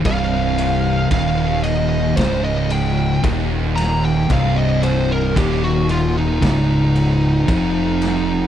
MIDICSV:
0, 0, Header, 1, 5, 480
1, 0, Start_track
1, 0, Tempo, 1061196
1, 24, Time_signature, 4, 2, 24, 8
1, 3831, End_track
2, 0, Start_track
2, 0, Title_t, "Lead electric guitar"
2, 0, Program_c, 0, 29
2, 28, Note_on_c, 0, 77, 105
2, 491, Note_off_c, 0, 77, 0
2, 506, Note_on_c, 0, 77, 90
2, 738, Note_off_c, 0, 77, 0
2, 740, Note_on_c, 0, 75, 89
2, 974, Note_off_c, 0, 75, 0
2, 981, Note_on_c, 0, 72, 102
2, 1099, Note_off_c, 0, 72, 0
2, 1106, Note_on_c, 0, 75, 76
2, 1221, Note_off_c, 0, 75, 0
2, 1228, Note_on_c, 0, 79, 101
2, 1459, Note_off_c, 0, 79, 0
2, 1700, Note_on_c, 0, 82, 95
2, 1818, Note_off_c, 0, 82, 0
2, 1831, Note_on_c, 0, 79, 89
2, 1943, Note_off_c, 0, 79, 0
2, 1957, Note_on_c, 0, 77, 95
2, 2064, Note_on_c, 0, 75, 82
2, 2066, Note_off_c, 0, 77, 0
2, 2180, Note_off_c, 0, 75, 0
2, 2189, Note_on_c, 0, 72, 84
2, 2302, Note_off_c, 0, 72, 0
2, 2317, Note_on_c, 0, 70, 95
2, 2426, Note_off_c, 0, 70, 0
2, 2428, Note_on_c, 0, 67, 92
2, 2542, Note_off_c, 0, 67, 0
2, 2550, Note_on_c, 0, 66, 82
2, 2663, Note_off_c, 0, 66, 0
2, 2672, Note_on_c, 0, 65, 88
2, 2783, Note_off_c, 0, 65, 0
2, 2794, Note_on_c, 0, 63, 84
2, 2902, Note_off_c, 0, 63, 0
2, 2907, Note_on_c, 0, 63, 103
2, 3831, Note_off_c, 0, 63, 0
2, 3831, End_track
3, 0, Start_track
3, 0, Title_t, "Distorted electric guitar"
3, 0, Program_c, 1, 30
3, 19, Note_on_c, 1, 36, 114
3, 494, Note_off_c, 1, 36, 0
3, 500, Note_on_c, 1, 39, 95
3, 974, Note_off_c, 1, 39, 0
3, 980, Note_on_c, 1, 37, 102
3, 1454, Note_off_c, 1, 37, 0
3, 1459, Note_on_c, 1, 39, 100
3, 1934, Note_off_c, 1, 39, 0
3, 1937, Note_on_c, 1, 36, 116
3, 2412, Note_off_c, 1, 36, 0
3, 2419, Note_on_c, 1, 39, 95
3, 2893, Note_off_c, 1, 39, 0
3, 2895, Note_on_c, 1, 37, 100
3, 3371, Note_off_c, 1, 37, 0
3, 3378, Note_on_c, 1, 41, 107
3, 3831, Note_off_c, 1, 41, 0
3, 3831, End_track
4, 0, Start_track
4, 0, Title_t, "Fingered electric bass"
4, 0, Program_c, 2, 33
4, 24, Note_on_c, 2, 24, 103
4, 486, Note_off_c, 2, 24, 0
4, 501, Note_on_c, 2, 27, 97
4, 964, Note_off_c, 2, 27, 0
4, 985, Note_on_c, 2, 25, 91
4, 1446, Note_off_c, 2, 25, 0
4, 1463, Note_on_c, 2, 27, 100
4, 1925, Note_off_c, 2, 27, 0
4, 1943, Note_on_c, 2, 24, 95
4, 2405, Note_off_c, 2, 24, 0
4, 2426, Note_on_c, 2, 27, 97
4, 2886, Note_off_c, 2, 27, 0
4, 2907, Note_on_c, 2, 25, 98
4, 3366, Note_off_c, 2, 25, 0
4, 3385, Note_on_c, 2, 29, 89
4, 3831, Note_off_c, 2, 29, 0
4, 3831, End_track
5, 0, Start_track
5, 0, Title_t, "Drums"
5, 22, Note_on_c, 9, 51, 93
5, 23, Note_on_c, 9, 36, 109
5, 68, Note_off_c, 9, 36, 0
5, 68, Note_off_c, 9, 51, 0
5, 264, Note_on_c, 9, 51, 74
5, 309, Note_off_c, 9, 51, 0
5, 502, Note_on_c, 9, 36, 110
5, 502, Note_on_c, 9, 51, 94
5, 547, Note_off_c, 9, 51, 0
5, 548, Note_off_c, 9, 36, 0
5, 740, Note_on_c, 9, 51, 62
5, 785, Note_off_c, 9, 51, 0
5, 982, Note_on_c, 9, 51, 102
5, 983, Note_on_c, 9, 36, 106
5, 992, Note_on_c, 9, 38, 116
5, 1027, Note_off_c, 9, 51, 0
5, 1028, Note_off_c, 9, 36, 0
5, 1037, Note_off_c, 9, 38, 0
5, 1222, Note_on_c, 9, 51, 78
5, 1267, Note_off_c, 9, 51, 0
5, 1464, Note_on_c, 9, 36, 103
5, 1464, Note_on_c, 9, 51, 101
5, 1509, Note_off_c, 9, 36, 0
5, 1509, Note_off_c, 9, 51, 0
5, 1707, Note_on_c, 9, 51, 77
5, 1718, Note_on_c, 9, 38, 33
5, 1752, Note_off_c, 9, 51, 0
5, 1763, Note_off_c, 9, 38, 0
5, 1944, Note_on_c, 9, 51, 103
5, 1945, Note_on_c, 9, 36, 109
5, 1989, Note_off_c, 9, 51, 0
5, 1990, Note_off_c, 9, 36, 0
5, 2185, Note_on_c, 9, 51, 72
5, 2230, Note_off_c, 9, 51, 0
5, 2426, Note_on_c, 9, 36, 105
5, 2428, Note_on_c, 9, 51, 105
5, 2471, Note_off_c, 9, 36, 0
5, 2473, Note_off_c, 9, 51, 0
5, 2665, Note_on_c, 9, 51, 68
5, 2710, Note_off_c, 9, 51, 0
5, 2905, Note_on_c, 9, 36, 112
5, 2906, Note_on_c, 9, 51, 95
5, 2916, Note_on_c, 9, 38, 117
5, 2951, Note_off_c, 9, 36, 0
5, 2951, Note_off_c, 9, 51, 0
5, 2961, Note_off_c, 9, 38, 0
5, 3146, Note_on_c, 9, 51, 69
5, 3191, Note_off_c, 9, 51, 0
5, 3384, Note_on_c, 9, 51, 93
5, 3385, Note_on_c, 9, 36, 104
5, 3429, Note_off_c, 9, 51, 0
5, 3430, Note_off_c, 9, 36, 0
5, 3625, Note_on_c, 9, 51, 68
5, 3636, Note_on_c, 9, 38, 30
5, 3671, Note_off_c, 9, 51, 0
5, 3681, Note_off_c, 9, 38, 0
5, 3831, End_track
0, 0, End_of_file